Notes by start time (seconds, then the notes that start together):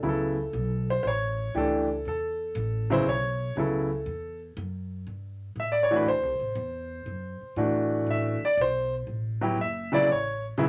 0.02 C#2 C#3 F#3 B3 E4
0.09 A4
0.53 B1
0.90 C5
1.03 A1 C5
1.07 C#5
1.55 C#2 E3 A3 D4 G4 A4
2.05 E2 A4
2.55 A1
2.90 C#3 F#3 B3 E4 C5
3.05 B1 C#5
3.56 C#2 C#3 F#3 B3 E4 A4
4.06 E2
4.57 F#2
5.07 G2
5.56 A2
5.60 E5
5.72 D5
5.83 C#5
5.91 E3 A3 D4 F#4
5.96 B4
6.06 D2 C5
6.23 C2
6.40 A1
6.55 E2
7.06 F#2
7.41 muted upright bass stroke
7.56 A2 E3 A3 D4 F#4
8.06 A1
8.11 E5
8.42 D5, muted upright bass stroke
8.57 B1
8.61 C5
9.07 A1
9.41 F#3 B3 E4 G4
9.57 F#1
9.61 E5
9.92 C#3 F#3 B3 E4 D5
10.07 A1
10.12 C#5
10.58 B1 C#3 F#3 B3 E4